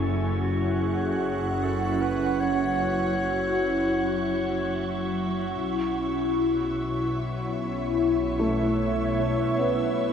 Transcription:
Already playing: double bass section F#1, ambient pad F#3 C#4 E4 F#4 F#5, synth texture C#6
0.02 clarinet A4
0.42 clarinet F#4
0.82 clarinet G#4
1.63 clarinet A4
2.02 clarinet B4
2.40 clarinet C#5
5.59 double bass section B1, ambient pad B2
5.95 ambient pad B3
6.32 ambient pad C#5
6.41 ambient pad E5
8.39 felt piano A3
9.59 felt piano B3

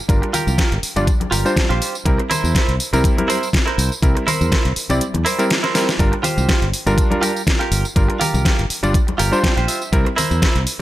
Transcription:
0.08 fingered electric bass G1, electric grand piano G3 D4 F4 A#4, kick, closed hi-hat, tambourine
0.22 muted clean electric guitar stroke, closed hi-hat
0.33 clean electric guitar F4 G4 A#4, open hi-hat, tambourine, low conga
0.47 fingered electric bass C2, tambourine, high conga
0.58 kick, snare, closed hi-hat, tambourine
0.72 fingered electric bass G1, closed hi-hat
0.83 muted fingered electric bass stroke, open hi-hat, tambourine
0.96 fingered electric bass G1, electric grand piano G3 D4 F4 D5, closed hi-hat, tambourine, high conga
1.07 kick, closed hi-hat, tambourine
1.20 muted clean electric guitar stroke, closed hi-hat, high conga
1.31 fingered electric bass G1, clean electric guitar F4 G4 A#4, open hi-hat, tambourine
1.45 electric grand piano G3 D4 F4 C5, tambourine
1.57 kick, snare, closed hi-hat, tambourine
1.69 fingered electric bass A#1, clean electric guitar F4 G4 C5, closed hi-hat
1.82 open hi-hat, tambourine
1.95 tambourine
2.05 fingered electric bass C2, electric grand piano G3 C4 E4 A#4, kick, closed hi-hat
2.18 muted clean electric guitar stroke, closed hi-hat
2.30 clean electric guitar E4 A#4 C5, open hi-hat, tambourine, low conga
2.44 fingered electric bass E2, tambourine, high conga
2.55 kick, snare, closed hi-hat, tambourine
2.68 fingered electric bass C2, closed hi-hat
2.80 open hi-hat, tambourine
2.93 fingered electric bass C2, electric grand piano G3 C4 E4 A#4, closed hi-hat, tambourine, high conga
3.04 kick, closed hi-hat, tambourine
3.17 electric grand piano G3 C4 E4 A#4, muted clean electric guitar stroke, closed hi-hat, high conga
3.28 clean electric guitar E4 A#4 C5, open hi-hat, tambourine
3.43 tambourine
3.53 kick, snare, closed hi-hat, tambourine
3.66 clean electric guitar E4 A#4 C5, closed hi-hat
3.78 fingered electric bass C2, open hi-hat, tambourine
3.92 tambourine
4.02 fingered electric bass C2, electric grand piano G3 C4 E4 A#4, kick, closed hi-hat, tambourine
4.15 muted clean electric guitar stroke, closed hi-hat
4.27 clean electric guitar E4 A#4 C5, open hi-hat, tambourine, low conga
4.40 fingered electric bass E2, tambourine, high conga
4.52 kick, snare, closed hi-hat, tambourine
4.65 fingered electric bass C2, closed hi-hat
4.76 muted fingered electric bass stroke, open hi-hat, tambourine
4.89 fingered electric bass C2, electric grand piano G3 C4 E4 D5, closed hi-hat, tambourine, high conga
5.01 closed hi-hat, tambourine
5.14 fingered electric bass E2, muted clean electric guitar stroke, closed hi-hat, high conga
5.25 clean electric guitar E4 A#4 C5, open hi-hat, tambourine
5.38 electric grand piano G3 C4 E4 A#4, closed hi-hat, tambourine
5.50 snare, closed hi-hat, tambourine
5.63 clean electric guitar E4 A#4 C5, snare, closed hi-hat
5.74 electric grand piano G3 C4 E4 A#4, snare, open hi-hat, tambourine
5.89 snare, closed hi-hat, tambourine
5.99 fingered electric bass G1, electric grand piano G3 D4 F4 A#4, kick, closed hi-hat, tambourine
6.12 muted clean electric guitar stroke, closed hi-hat
6.23 clean electric guitar F4 G4 C5, open hi-hat, tambourine, low conga
6.37 fingered electric bass C2, tambourine, high conga
6.49 kick, snare, closed hi-hat, tambourine
6.62 fingered electric bass G1, closed hi-hat
6.74 open hi-hat, tambourine
6.86 fingered electric bass G1, electric grand piano G3 D4 F4 A#4, closed hi-hat, tambourine, high conga
6.98 kick, closed hi-hat, tambourine
7.10 electric grand piano G3 D4 F4 A#4, muted clean electric guitar stroke, closed hi-hat, high conga
7.21 clean electric guitar F4 G4 A#4, open hi-hat, tambourine
7.36 tambourine
7.47 kick, snare, closed hi-hat
7.59 clean electric guitar F4 G4 A#4, closed hi-hat
7.71 fingered electric bass G1, open hi-hat, tambourine
7.85 tambourine
7.96 fingered electric bass G1, electric grand piano G3 D4 F4 A#4, kick, closed hi-hat, tambourine
8.08 muted clean electric guitar stroke, closed hi-hat
8.20 clean electric guitar F4 G4 A#4, open hi-hat, tambourine, low conga
8.34 fingered electric bass C2, tambourine, high conga
8.45 kick, snare, closed hi-hat, tambourine
8.59 fingered electric bass G1, closed hi-hat
8.70 muted fingered electric bass stroke, open hi-hat, tambourine
8.83 fingered electric bass G1, electric grand piano G3 D4 F4 D5, closed hi-hat, tambourine, high conga
8.94 kick, closed hi-hat, tambourine
9.07 muted clean electric guitar stroke, closed hi-hat, high conga
9.18 fingered electric bass G1, clean electric guitar F4 G4 A#4, open hi-hat, tambourine
9.32 electric grand piano G3 D4 F4 C5, tambourine
9.43 clean electric guitar G5, kick, snare, closed hi-hat
9.56 fingered electric bass A#1, clean electric guitar F4 G4 C5, closed hi-hat
9.68 clean electric guitar E5, open hi-hat, tambourine
9.82 tambourine
9.92 fingered electric bass C2, electric grand piano G3 C4 E4 A#4, kick, closed hi-hat, tambourine
10.05 muted clean electric guitar stroke, closed hi-hat
10.16 clean electric guitar E4 A#4 C5, open hi-hat, tambourine, low conga
10.31 fingered electric bass E2, tambourine, high conga
10.42 kick, snare, closed hi-hat, tambourine
10.55 fingered electric bass C2, closed hi-hat
10.67 open hi-hat, tambourine

